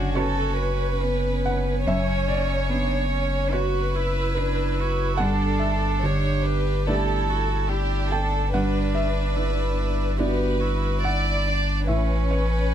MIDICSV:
0, 0, Header, 1, 6, 480
1, 0, Start_track
1, 0, Key_signature, 2, "minor"
1, 0, Tempo, 846262
1, 1058, Time_signature, 4, 2, 24, 8
1, 1534, Tempo, 832178
1, 5854, Tempo, 846262
1, 7300, End_track
2, 0, Start_track
2, 0, Title_t, "Felt piano"
2, 0, Program_c, 0, 0
2, 0, Control_c, 0, 64, 127
2, 0, Note_on_c, 0, 42, 56
2, 0, Note_on_c, 0, 50, 40
2, 0, Note_on_c, 0, 74, 72
2, 0, Note_on_c, 0, 76, 68
2, 71, Note_off_c, 0, 74, 0
2, 86, Note_on_c, 0, 61, 42
2, 90, Note_on_c, 0, 66, 42
2, 91, Note_on_c, 0, 73, 75
2, 95, Note_on_c, 0, 71, 47
2, 382, Note_off_c, 0, 50, 0
2, 793, Note_off_c, 0, 73, 0
2, 825, Note_on_c, 0, 78, 77
2, 1032, Note_off_c, 0, 61, 0
2, 1033, Note_off_c, 0, 42, 0
2, 1034, Note_off_c, 0, 66, 0
2, 1037, Note_off_c, 0, 71, 0
2, 1046, Note_off_c, 0, 78, 0
2, 1061, Note_on_c, 0, 42, 60
2, 1064, Note_off_c, 0, 76, 0
2, 1064, Note_on_c, 0, 76, 85
2, 1068, Control_c, 0, 64, 0
2, 1165, Control_c, 0, 64, 127
2, 1283, Note_off_c, 0, 76, 0
2, 1296, Note_on_c, 0, 74, 73
2, 1527, Note_on_c, 0, 59, 43
2, 1991, Note_off_c, 0, 74, 0
2, 2007, Note_on_c, 0, 73, 72
2, 2014, Note_on_c, 0, 66, 42
2, 2014, Note_on_c, 0, 71, 52
2, 2297, Note_off_c, 0, 59, 0
2, 2466, Note_off_c, 0, 73, 0
2, 2473, Note_off_c, 0, 71, 0
2, 2482, Note_on_c, 0, 71, 58
2, 2711, Note_off_c, 0, 71, 0
2, 2951, Note_off_c, 0, 66, 0
2, 2953, Note_off_c, 0, 42, 0
2, 2958, Note_on_c, 0, 78, 88
2, 2974, Note_on_c, 0, 43, 60
2, 2985, Control_c, 0, 64, 0
2, 3070, Control_c, 0, 64, 127
2, 3189, Note_off_c, 0, 78, 0
2, 3200, Note_on_c, 0, 76, 76
2, 3453, Note_on_c, 0, 50, 42
2, 3905, Note_off_c, 0, 76, 0
2, 3938, Note_on_c, 0, 74, 74
2, 3944, Note_on_c, 0, 57, 42
2, 3944, Note_on_c, 0, 62, 43
2, 3948, Note_on_c, 0, 55, 46
2, 4223, Note_off_c, 0, 50, 0
2, 4633, Note_off_c, 0, 74, 0
2, 4658, Note_on_c, 0, 79, 77
2, 4872, Note_off_c, 0, 43, 0
2, 4876, Note_off_c, 0, 57, 0
2, 4877, Note_off_c, 0, 62, 0
2, 4879, Note_off_c, 0, 55, 0
2, 4880, Note_off_c, 0, 79, 0
2, 4899, Note_on_c, 0, 78, 76
2, 4902, Note_on_c, 0, 43, 59
2, 4907, Control_c, 0, 64, 0
2, 5015, Control_c, 0, 64, 127
2, 5119, Note_off_c, 0, 78, 0
2, 5135, Note_on_c, 0, 76, 74
2, 5375, Note_on_c, 0, 50, 41
2, 5831, Note_off_c, 0, 76, 0
2, 5852, Note_on_c, 0, 59, 40
2, 5855, Note_on_c, 0, 64, 45
2, 5855, Note_on_c, 0, 74, 65
2, 5856, Note_on_c, 0, 62, 41
2, 6141, Note_off_c, 0, 50, 0
2, 6309, Note_off_c, 0, 74, 0
2, 6338, Note_on_c, 0, 78, 75
2, 6788, Note_off_c, 0, 59, 0
2, 6790, Note_off_c, 0, 62, 0
2, 6790, Note_off_c, 0, 64, 0
2, 6792, Note_off_c, 0, 43, 0
2, 6792, Note_off_c, 0, 78, 0
2, 6806, Note_on_c, 0, 76, 62
2, 6812, Note_on_c, 0, 45, 53
2, 6821, Control_c, 0, 64, 0
2, 6931, Control_c, 0, 64, 127
2, 7033, Note_off_c, 0, 76, 0
2, 7054, Note_on_c, 0, 73, 66
2, 7300, Note_off_c, 0, 45, 0
2, 7300, Note_off_c, 0, 73, 0
2, 7300, End_track
3, 0, Start_track
3, 0, Title_t, "Violin section"
3, 0, Program_c, 1, 48
3, 0, Note_on_c, 1, 66, 54
3, 84, Note_on_c, 1, 69, 62
3, 90, Note_off_c, 1, 66, 0
3, 317, Note_on_c, 1, 71, 55
3, 328, Note_off_c, 1, 69, 0
3, 1049, Note_on_c, 1, 73, 61
3, 1050, Note_off_c, 1, 71, 0
3, 1991, Note_off_c, 1, 73, 0
3, 2008, Note_on_c, 1, 71, 63
3, 2971, Note_on_c, 1, 69, 60
3, 2972, Note_off_c, 1, 71, 0
3, 3443, Note_off_c, 1, 69, 0
3, 3449, Note_on_c, 1, 73, 57
3, 3689, Note_on_c, 1, 71, 62
3, 3691, Note_off_c, 1, 73, 0
3, 3933, Note_off_c, 1, 71, 0
3, 3939, Note_on_c, 1, 69, 57
3, 4417, Note_off_c, 1, 69, 0
3, 4417, Note_on_c, 1, 67, 62
3, 4652, Note_on_c, 1, 69, 58
3, 4656, Note_off_c, 1, 67, 0
3, 4894, Note_off_c, 1, 69, 0
3, 4898, Note_on_c, 1, 71, 60
3, 5836, Note_off_c, 1, 71, 0
3, 5862, Note_on_c, 1, 71, 54
3, 6326, Note_off_c, 1, 71, 0
3, 6334, Note_on_c, 1, 74, 54
3, 6803, Note_off_c, 1, 74, 0
3, 6813, Note_on_c, 1, 71, 55
3, 7300, Note_off_c, 1, 71, 0
3, 7300, End_track
4, 0, Start_track
4, 0, Title_t, "Cello"
4, 0, Program_c, 2, 42
4, 0, Note_on_c, 2, 62, 60
4, 110, Note_on_c, 2, 66, 66
4, 118, Note_off_c, 2, 62, 0
4, 583, Note_on_c, 2, 59, 55
4, 592, Note_off_c, 2, 66, 0
4, 1058, Note_on_c, 2, 61, 61
4, 1066, Note_off_c, 2, 59, 0
4, 1531, Note_on_c, 2, 62, 52
4, 1540, Note_off_c, 2, 61, 0
4, 1763, Note_off_c, 2, 62, 0
4, 1766, Note_on_c, 2, 61, 59
4, 2007, Note_on_c, 2, 66, 65
4, 2016, Note_off_c, 2, 61, 0
4, 2257, Note_on_c, 2, 64, 58
4, 2266, Note_off_c, 2, 66, 0
4, 2500, Note_on_c, 2, 62, 63
4, 2508, Note_off_c, 2, 64, 0
4, 2744, Note_on_c, 2, 66, 65
4, 2753, Note_off_c, 2, 62, 0
4, 2985, Note_on_c, 2, 62, 68
4, 2993, Note_off_c, 2, 66, 0
4, 3940, Note_off_c, 2, 62, 0
4, 3945, Note_on_c, 2, 67, 67
4, 4178, Note_on_c, 2, 66, 59
4, 4187, Note_off_c, 2, 67, 0
4, 4416, Note_on_c, 2, 64, 60
4, 4425, Note_off_c, 2, 66, 0
4, 4656, Note_on_c, 2, 62, 59
4, 4665, Note_off_c, 2, 64, 0
4, 4881, Note_off_c, 2, 62, 0
4, 4885, Note_on_c, 2, 62, 61
4, 5372, Note_on_c, 2, 64, 53
4, 5380, Note_off_c, 2, 62, 0
4, 5845, Note_on_c, 2, 67, 60
4, 5854, Note_off_c, 2, 64, 0
4, 6085, Note_on_c, 2, 66, 58
4, 6093, Note_off_c, 2, 67, 0
4, 6332, Note_on_c, 2, 64, 62
4, 6340, Note_off_c, 2, 66, 0
4, 6577, Note_on_c, 2, 62, 54
4, 6586, Note_off_c, 2, 64, 0
4, 6809, Note_on_c, 2, 61, 59
4, 6817, Note_off_c, 2, 62, 0
4, 7298, Note_off_c, 2, 61, 0
4, 7300, End_track
5, 0, Start_track
5, 0, Title_t, "Viola"
5, 0, Program_c, 3, 41
5, 0, Note_on_c, 3, 61, 56
5, 549, Note_off_c, 3, 61, 0
5, 578, Note_on_c, 3, 61, 50
5, 2013, Note_on_c, 3, 66, 61
5, 2022, Note_off_c, 3, 61, 0
5, 2252, Note_on_c, 3, 64, 57
5, 2261, Note_off_c, 3, 66, 0
5, 2491, Note_off_c, 3, 64, 0
5, 2495, Note_on_c, 3, 64, 55
5, 2971, Note_on_c, 3, 62, 57
5, 2979, Note_off_c, 3, 64, 0
5, 3453, Note_on_c, 3, 67, 58
5, 3462, Note_off_c, 3, 62, 0
5, 3932, Note_on_c, 3, 64, 56
5, 3940, Note_off_c, 3, 67, 0
5, 4414, Note_on_c, 3, 62, 52
5, 4422, Note_off_c, 3, 64, 0
5, 4895, Note_off_c, 3, 62, 0
5, 4897, Note_on_c, 3, 62, 57
5, 5835, Note_off_c, 3, 62, 0
5, 5854, Note_on_c, 3, 66, 59
5, 6088, Note_on_c, 3, 64, 55
5, 6096, Note_off_c, 3, 66, 0
5, 6326, Note_on_c, 3, 62, 46
5, 6335, Note_off_c, 3, 64, 0
5, 6809, Note_off_c, 3, 62, 0
5, 6813, Note_on_c, 3, 61, 60
5, 7300, Note_off_c, 3, 61, 0
5, 7300, End_track
6, 0, Start_track
6, 0, Title_t, "Sub bass"
6, 0, Program_c, 4, 38
6, 0, Note_on_c, 4, 30, 59
6, 1054, Note_off_c, 4, 30, 0
6, 1059, Note_on_c, 4, 30, 61
6, 2977, Note_on_c, 4, 31, 61
6, 2986, Note_off_c, 4, 30, 0
6, 4890, Note_off_c, 4, 31, 0
6, 4894, Note_on_c, 4, 31, 65
6, 6807, Note_on_c, 4, 33, 64
6, 6816, Note_off_c, 4, 31, 0
6, 7300, Note_off_c, 4, 33, 0
6, 7300, End_track
0, 0, End_of_file